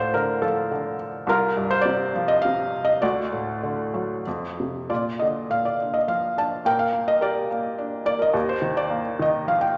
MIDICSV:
0, 0, Header, 1, 2, 480
1, 0, Start_track
1, 0, Tempo, 570342
1, 1078, Time_signature, 3, 2, 24, 8
1, 1556, Tempo, 592300
1, 2996, Tempo, 641711
1, 3956, Tempo, 601805
1, 4436, Tempo, 568182
1, 8037, End_track
2, 0, Start_track
2, 0, Title_t, "Felt piano"
2, 0, Program_c, 0, 0
2, 0, Control_c, 0, 64, 127
2, 0, Note_on_c, 0, 38, 55
2, 0, Note_on_c, 0, 45, 46
2, 0, Note_on_c, 0, 65, 61
2, 0, Note_on_c, 0, 72, 73
2, 0, Note_on_c, 0, 74, 77
2, 116, Note_on_c, 0, 70, 78
2, 119, Note_off_c, 0, 72, 0
2, 127, Note_on_c, 0, 50, 56
2, 320, Note_off_c, 0, 65, 0
2, 352, Note_on_c, 0, 69, 72
2, 355, Note_on_c, 0, 53, 50
2, 366, Note_off_c, 0, 70, 0
2, 589, Note_off_c, 0, 50, 0
2, 601, Note_on_c, 0, 50, 48
2, 805, Note_off_c, 0, 69, 0
2, 811, Note_off_c, 0, 45, 0
2, 1046, Note_off_c, 0, 38, 0
2, 1054, Note_off_c, 0, 53, 0
2, 1063, Note_off_c, 0, 50, 0
2, 1067, Note_on_c, 0, 36, 69
2, 1080, Note_on_c, 0, 65, 61
2, 1089, Control_c, 0, 64, 0
2, 1089, Note_on_c, 0, 70, 93
2, 1090, Note_off_c, 0, 74, 0
2, 1233, Control_c, 0, 64, 127
2, 1322, Note_on_c, 0, 43, 54
2, 1435, Note_on_c, 0, 72, 90
2, 1450, Note_off_c, 0, 70, 0
2, 1527, Note_on_c, 0, 74, 95
2, 1548, Note_off_c, 0, 72, 0
2, 1560, Note_on_c, 0, 48, 54
2, 1763, Note_off_c, 0, 65, 0
2, 1801, Note_on_c, 0, 53, 64
2, 1906, Note_on_c, 0, 75, 87
2, 1912, Note_off_c, 0, 74, 0
2, 2016, Note_on_c, 0, 77, 90
2, 2031, Note_off_c, 0, 48, 0
2, 2035, Note_off_c, 0, 75, 0
2, 2043, Note_on_c, 0, 48, 50
2, 2252, Note_off_c, 0, 43, 0
2, 2364, Note_on_c, 0, 75, 78
2, 2398, Note_off_c, 0, 77, 0
2, 2477, Note_off_c, 0, 36, 0
2, 2497, Note_off_c, 0, 53, 0
2, 2503, Note_off_c, 0, 75, 0
2, 2503, Note_on_c, 0, 74, 83
2, 2505, Note_off_c, 0, 48, 0
2, 2511, Note_on_c, 0, 38, 65
2, 2512, Note_on_c, 0, 66, 57
2, 2526, Control_c, 0, 64, 0
2, 2646, Control_c, 0, 64, 127
2, 2754, Note_on_c, 0, 45, 43
2, 3001, Note_on_c, 0, 50, 47
2, 3231, Note_on_c, 0, 54, 46
2, 3437, Note_off_c, 0, 74, 0
2, 3442, Note_off_c, 0, 66, 0
2, 3443, Note_off_c, 0, 38, 0
2, 3452, Note_off_c, 0, 45, 0
2, 3461, Note_off_c, 0, 50, 0
2, 3467, Note_off_c, 0, 54, 0
2, 3480, Note_on_c, 0, 41, 46
2, 3482, Control_c, 0, 64, 0
2, 3596, Control_c, 0, 64, 127
2, 3723, Note_on_c, 0, 48, 38
2, 3946, Note_off_c, 0, 41, 0
2, 3947, Note_on_c, 0, 74, 64
2, 3948, Note_on_c, 0, 46, 48
2, 3950, Note_on_c, 0, 65, 44
2, 3951, Note_off_c, 0, 48, 0
2, 3967, Control_c, 0, 64, 0
2, 4083, Control_c, 0, 64, 127
2, 4184, Note_on_c, 0, 75, 57
2, 4203, Note_off_c, 0, 74, 0
2, 4205, Note_on_c, 0, 50, 36
2, 4415, Note_off_c, 0, 46, 0
2, 4427, Note_on_c, 0, 46, 39
2, 4433, Note_on_c, 0, 77, 70
2, 4436, Note_off_c, 0, 75, 0
2, 4549, Note_off_c, 0, 77, 0
2, 4556, Note_on_c, 0, 74, 57
2, 4645, Note_off_c, 0, 65, 0
2, 4694, Note_on_c, 0, 62, 40
2, 4795, Note_on_c, 0, 75, 59
2, 4809, Note_off_c, 0, 74, 0
2, 4916, Note_on_c, 0, 53, 40
2, 4919, Note_on_c, 0, 77, 66
2, 4924, Note_off_c, 0, 75, 0
2, 5138, Note_off_c, 0, 50, 0
2, 5154, Note_off_c, 0, 62, 0
2, 5166, Note_on_c, 0, 62, 41
2, 5169, Note_off_c, 0, 77, 0
2, 5173, Note_on_c, 0, 81, 78
2, 5369, Note_off_c, 0, 46, 0
2, 5385, Note_off_c, 0, 53, 0
2, 5397, Note_off_c, 0, 62, 0
2, 5399, Note_on_c, 0, 46, 58
2, 5407, Note_on_c, 0, 79, 86
2, 5411, Note_on_c, 0, 70, 57
2, 5414, Note_off_c, 0, 81, 0
2, 5416, Control_c, 0, 64, 0
2, 5518, Note_on_c, 0, 77, 73
2, 5527, Note_off_c, 0, 79, 0
2, 5557, Control_c, 0, 64, 127
2, 5630, Note_on_c, 0, 58, 50
2, 5759, Note_on_c, 0, 75, 81
2, 5763, Note_off_c, 0, 77, 0
2, 5859, Note_off_c, 0, 70, 0
2, 5869, Note_off_c, 0, 75, 0
2, 5872, Note_on_c, 0, 70, 55
2, 5877, Note_on_c, 0, 67, 49
2, 5882, Note_on_c, 0, 74, 77
2, 6108, Note_off_c, 0, 58, 0
2, 6121, Note_on_c, 0, 58, 48
2, 6357, Note_on_c, 0, 62, 53
2, 6560, Note_off_c, 0, 70, 0
2, 6572, Note_off_c, 0, 58, 0
2, 6577, Note_off_c, 0, 74, 0
2, 6585, Note_on_c, 0, 58, 55
2, 6590, Note_on_c, 0, 74, 89
2, 6700, Note_on_c, 0, 70, 52
2, 6704, Note_off_c, 0, 74, 0
2, 6723, Note_on_c, 0, 75, 75
2, 6799, Note_off_c, 0, 46, 0
2, 6807, Note_off_c, 0, 67, 0
2, 6822, Note_off_c, 0, 58, 0
2, 6822, Note_off_c, 0, 62, 0
2, 6822, Note_on_c, 0, 39, 67
2, 6846, Control_c, 0, 64, 0
2, 6942, Note_off_c, 0, 75, 0
2, 6953, Note_on_c, 0, 72, 68
2, 6983, Control_c, 0, 64, 127
2, 7060, Note_on_c, 0, 51, 51
2, 7189, Note_on_c, 0, 74, 80
2, 7201, Note_off_c, 0, 72, 0
2, 7299, Note_on_c, 0, 58, 55
2, 7393, Note_off_c, 0, 70, 0
2, 7535, Note_off_c, 0, 51, 0
2, 7547, Note_on_c, 0, 51, 52
2, 7564, Note_off_c, 0, 74, 0
2, 7570, Note_on_c, 0, 75, 67
2, 7784, Note_on_c, 0, 53, 45
2, 7790, Note_on_c, 0, 77, 69
2, 7808, Note_off_c, 0, 75, 0
2, 7899, Note_on_c, 0, 79, 66
2, 7915, Note_off_c, 0, 77, 0
2, 8030, Note_off_c, 0, 51, 0
2, 8037, Note_off_c, 0, 39, 0
2, 8037, Note_off_c, 0, 53, 0
2, 8037, Note_off_c, 0, 58, 0
2, 8037, Note_off_c, 0, 79, 0
2, 8037, End_track
0, 0, End_of_file